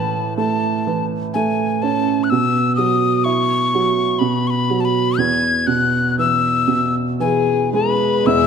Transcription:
Already playing: A2 E3 A5
0.37 A3 A5
0.87 E3
1.34 A3 G#5
1.82 C#4 A5
2.24 F#6
2.30 B2 E6
2.76 F#3 D#6
3.24 E4 C#6
3.75 F#3
4.19 B2 B5
4.47 B5 C#6
4.70 F#3
4.80 A5
4.85 B5
5.18 E2 G#6
5.67 B2 F#6
6.18 E3 E6
6.68 B2
7.20 E3 G#4 G#5
7.73 G#3 B4 B5
8.25 E2 B2 G#3 E5 E6

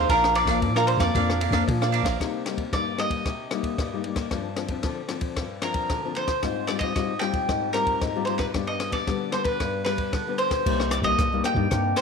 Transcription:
0.09 A#1 A#2 F3 A#3 D4 A#4 D5 F5, kick, ride
0.24 cross-stick
0.35 D4 A#4 D5 F5, ride
0.45 A#1 F3 A#3 D4 A#4 D5, kick, cross-stick, ride
0.50 F5
0.62 A#2 F3, kick, ride
0.75 F3 A#3 D4 A#4 D5 F5, cross-stick
0.79 A#4
0.87 C5, ride
0.97 F2 F3 A#3 D4 D5 F5, kick, cross-stick, ride
1.02 A#4
1.15 F2 A#2 F3 A#3 D4 A#4 D5 F5, kick, ride
1.30 cross-stick
1.40 D4 A#4 D5 F5, ride
1.51 F2 F3 A#3 D4 A#4 D5 F5, kick, cross-stick, ride
1.67 A#2 F3, kick, ride
1.81 F3 A#3 D4 A#4 D5 F5, cross-stick
1.92 D4 A#4 D5 F5, ride
2.03 A#1 A#4 D5 F5, kick, cross-stick, ride
2.20 C3 G3 A#3 D#4, kick, cross-stick, ride
2.46 G3 A#3 D#4, cross-stick, ride
2.58 kick, ride
2.73 G2 G3 A#3 D#4 D5, kick, cross-stick, ride
2.98 G3 A#3 D#4 D#5, cross-stick, ride
3.10 kick, ride
3.26 C3, kick, cross-stick, ride
3.51 G3 A#3 D#4, cross-stick, ride
3.63 kick, ride
3.78 G2, kick, cross-stick, ride
3.93 G3 A#3 D#4
4.04 G3 A#3 D#4, ride
4.16 kick, cross-stick, ride
4.31 G2 F3 C4 D4, kick, cross-stick, ride
4.56 F3 C4 D4, cross-stick, ride
4.68 F3 C4 D4, kick, ride
4.83 D3 F3 C4 D4, kick, cross-stick, ride
5.09 F3 C4 D4, cross-stick, ride
5.21 kick, ride
5.36 G2, kick, cross-stick, ride
5.62 F3 C4 D4 A#4, cross-stick, ride
5.74 kick, ride
5.90 D3, kick, cross-stick, ride
6.05 F3 C4 D4
6.15 F3 C4 D4 C5, ride
6.28 kick, cross-stick, ride
6.43 G#2 G3 C4 F4, kick, cross-stick, ride
6.67 G3 C4 F4 D5, cross-stick, ride
6.79 G3 C4 D#5, kick, ride
6.83 F4
6.96 G#2 G3 C4 F4, kick, cross-stick, ride
7.19 G3 C4 F4 G5, cross-stick, ride
7.33 kick, ride
7.48 G#2, kick, cross-stick, ride
7.73 G3 C4 F4 A#4, cross-stick, ride
7.87 kick, ride
8.01 G#2, kick, cross-stick, ride
8.16 G3 C4 F4
8.25 G3 C4 F4 C5, ride
8.38 B4, kick, cross-stick, ride
8.54 G2 G3 B3 D4, kick, cross-stick, ride
8.67 D#5
8.80 cross-stick, ride
8.92 G3 B3 D4 D5, kick, ride
9.07 D3 G3 B3 D4, kick, cross-stick, ride
9.32 G3 B3 D4 C5, cross-stick, ride
9.44 B4, kick, ride
9.60 G2, kick, cross-stick, ride
9.85 G3 B3 D4 B4, cross-stick, ride
9.98 kick, ride
10.13 D3, kick, cross-stick, ride
10.28 G3 B3 D4
10.38 C5, ride
10.51 kick, cross-stick, ride
10.66 C2 C3 G3 A#3 D#4, kick, crash
10.80 cross-stick
10.91 D5, cross-stick, closed hi-hat
11.02 C2 G3 A#3 D#4 D#5, kick, closed hi-hat
11.18 C2 G2, kick, cross-stick, closed hi-hat
11.32 G3 A#3 D#4
11.44 G5, cross-stick, closed hi-hat
11.54 G2 G3 A#3 D#4, kick
11.70 G2 C3 G3 A#3 D#4, kick, cross-stick, closed hi-hat
11.96 C5, cross-stick, closed hi-hat

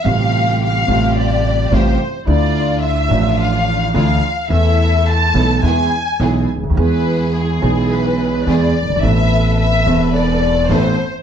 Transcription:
0.04 A1 A2 C3 G3 A3 F4 G4 F5
0.61 F5
0.87 A1 A2 C3 G3 A3 F4 G4
0.91 F4
1.17 D5
1.72 A1 A2 C3 G3 A3 F4 G4 C5
2.25 D2 D3 A3 D4 E4 F4 D5
2.83 E5
3.08 A1 A2 F3 A3 D4 F4
3.39 F5
3.94 D2 D3 E3 A3 D4 E4 F4 F5
4.48 E2 E3 A3 B3 E4 A4 E5
4.52 A4
5.07 A5
5.34 B1 B2 E3 A3 B3 E4 A4
5.62 E2 E3 G#3 B3 E4 G#4 G#5
6.20 B1 B2 E3 G#3 B3 E4 G#4
6.56 C#2
6.63 D2
6.70 D#2
6.77 E2 E3 G#3 B3 E4 G#4 B4
7.34 G#4
7.60 B1 B2 E3 G#3 B3 E4 G#4
7.91 B4
8.47 E2 E3 G#3 B3 E4 G#4 D5
8.82 F#1
8.89 G1
8.96 G#1
9.01 A1 A2 E3 B3 C4 A4 B4 E5
9.59 E5
9.85 E1 E2 E3 B3 C4 A4 B4
9.89 A4
10.15 D5
10.69 A1 A2 E3 B3 C4 A4 B4 C5

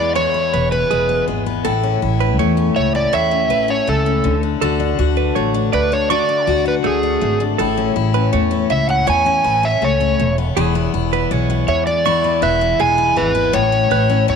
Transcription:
Already playing: E2 G#3 B3 E4
0.00 D5
0.15 E2 E4 C#5
0.34 B3
0.54 E1 E4 B4
0.72 B3 B4
0.91 E1 G#3 G#4
1.09 B3
1.28 G#1 G#3
1.46 B3
1.65 A1 A2 E4 A4
1.83 C#4
2.02 A1 E4
2.20 C#4 B4
2.39 E2 A3 C#5
2.57 C#4
2.76 C#2 A3 C#5 E5
2.95 C#4 D5
3.13 E2 A2 E4 C#5 E5
3.31 C#4
3.50 A1 E4 B4
3.68 C#4 C#5
3.87 C#2 A3 A4
4.06 C#4
4.24 D2 D3
4.43 D4
4.61 D2 D3 F#4 A4
4.80 D4
4.99 D2 F#4
5.17 D4 B4
5.35 A1 A3 C#5
5.54 D4
5.73 D2 A3 B4 D5
5.92 D4 C#5
6.10 D3 F#4 D5 C#6
6.29 D4
6.47 D2 F#4 B4
6.65 D4 B4
6.84 D2 A3 G#4
7.03 D4
7.21 G#1 A3
7.40 D4
7.58 A1 A2 E4 A4
7.77 C#4
7.96 A1 E4
8.14 C#4 B4
8.33 E2 A3 C#5
8.51 C#4
8.70 C#2 A3 E5
8.89 C#4 F#5
9.07 E2 A2 E4 C#5 G#5
9.26 C#4
9.44 A1 E4 B4
9.63 C#4 E5
9.82 C#2 A3 C#5
10.01 C#4
10.20 E1 E2
10.38 B3
10.57 E1 E2 E4 G#4
10.75 B3
10.94 E1 E4
11.13 B3 B4
11.31 B1 G#3 C#5
11.50 B3
11.68 E2 G#3 C#5 E5
11.87 B3 D5
12.05 E2 E4 C#6
12.24 B3
12.42 E1 E4 B4 E5
12.61 B3
12.79 E1 G#3 G#4 G#5
12.98 B3
13.16 G#1 G#3 B4
13.35 B3
13.53 A1 A2 C#5
13.72 C#4
13.91 A1 E4 B4
14.10 C#4
14.28 E2 A3 C#5

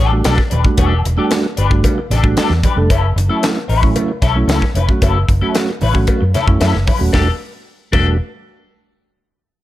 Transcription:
Already playing: A1 D4
0.00 G4 A4
0.11 G3 A3 D4 F#4, muted clean electric guitar stroke
0.24 B1 D4 G4 A4, snare, closed hi-hat, cowbell, high conga
0.38 muted clean electric guitar stroke, kick, snare
0.50 D#1 D4 G4 B4, closed hi-hat, high conga
0.64 G3 A3 D4 F#4, muted clean electric guitar stroke, kick
0.77 E1 D4 G4 A4, kick, closed hi-hat, cowbell, muted conga
1.04 E1, muted clean electric guitar stroke, closed hi-hat, muted conga
1.17 G3 A3 D4 F#4 G4 A4
1.31 snare, closed hi-hat, cowbell, high conga
1.44 muted clean electric guitar stroke
1.57 G1 D4 G4 B4, closed hi-hat
1.70 G3 A3 D4 F#4, muted clean electric guitar stroke, kick
1.84 muted clean electric guitar stroke, kick, closed hi-hat, cowbell, low conga
1.98 muted clean electric guitar stroke
2.10 A1 D4 G4 A4, snare, closed hi-hat, muted conga, low conga
2.23 G3 A3 D4 F#4, muted clean electric guitar stroke, kick
2.37 D4 G4 A4, snare, closed hi-hat, cowbell, high conga
2.50 E2, muted clean electric guitar stroke, snare
2.63 D4 G4 B4, kick, closed hi-hat, high conga
2.76 F1 G3 A3 D4 A4, muted clean electric guitar stroke
2.90 F#1 C#4 E4 A4, kick, closed hi-hat, cowbell, muted conga
3.16 F#1, muted clean electric guitar stroke, closed hi-hat, muted conga
3.29 F#3 A3 C#4 E4 A4
3.43 snare, closed hi-hat, cowbell, high conga
3.56 muted clean electric guitar stroke
3.68 A1 C#4 E4 B4, open hi-hat
3.82 F#3 A3 C#4 E4, muted clean electric guitar stroke, kick
3.95 muted clean electric guitar stroke, closed hi-hat, cowbell, low conga
4.08 muted clean electric guitar stroke
4.22 B1 C#4 E4 A4, kick, snare, closed hi-hat, muted conga
4.35 F#3 A3 C#4 E4, muted clean electric guitar stroke
4.48 C#2 C#4 E4 A4, snare, closed hi-hat, cowbell, high conga
4.62 muted clean electric guitar stroke, kick, snare
4.74 F1 C#4 E4 B4, closed hi-hat, high conga
4.89 F#3 A3 C#4 F#4, muted clean electric guitar stroke, kick
5.02 F#1 C#4 E4 A4, kick, closed hi-hat, cowbell, muted conga
5.29 F#1, muted clean electric guitar stroke, kick, closed hi-hat, muted conga
5.41 F#3 A3 C#4 E4 F#4 A4
5.55 snare, closed hi-hat, cowbell, high conga
5.69 muted clean electric guitar stroke
5.81 A1 C#4 E4 B4, open hi-hat, low conga
5.94 F#3 A3 C#4 F#4, muted clean electric guitar stroke, kick
6.07 muted clean electric guitar stroke, kick, closed hi-hat, cowbell
6.21 F#2, muted clean electric guitar stroke
6.34 C#4 E4 A4, snare, closed hi-hat, muted conga, low conga
6.47 F#2 F#3 A3 C#4 E4, muted clean electric guitar stroke, kick
6.60 F#2 C#4 E4 A4, snare, closed hi-hat, cowbell, high conga
6.74 F#1, muted clean electric guitar stroke, snare
6.86 C#4 E4 B4, kick, open hi-hat, high conga
6.99 D#1 F#3 A3 C#4 F#4, muted clean electric guitar stroke
7.13 E1 G3 A3 D4 F#4 G4 A4, kick, snare, cowbell, muted conga
7.92 E1 G3 A3 D4 F#4 G4 A4, kick, crash, cowbell, muted conga

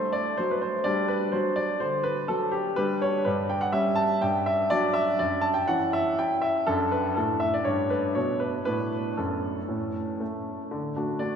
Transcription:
Already playing: A3 D4 C5
0.13 D5
0.37 F#3 C5
0.51 B4
0.62 C5
0.84 G3 D4 D5
1.08 B4
1.32 F#3 C5
1.56 D5
1.80 D3 C5
2.03 B4
2.28 F#3 A4
2.51 G4
2.76 G3 D4 B4
3.02 C#5
3.25 G2 B4
3.50 G5
3.61 F#5
3.72 G3 C#4 E5
3.95 A5
4.22 G2 G5
4.46 E5
4.70 F#3 D4 D5
4.93 E5
5.19 F#2 D5
5.41 A5
5.54 G5
5.68 E3 C#4 F#5
5.93 E5
6.19 E4 G5
6.42 E5
6.67 F#2 D4 A4
6.92 B4
7.16 A2 A4
7.40 E5
7.54 D5
7.65 G2 D4 C#5
7.90 B4
8.15 B2 C#5
8.40 B4
8.65 A2 D4 B4
9.17 F#2 A4
9.68 A2 C#4
10.20 A3
10.71 D3
10.96 A3 D4 F#4
11.19 A3 D4 F#4 D5

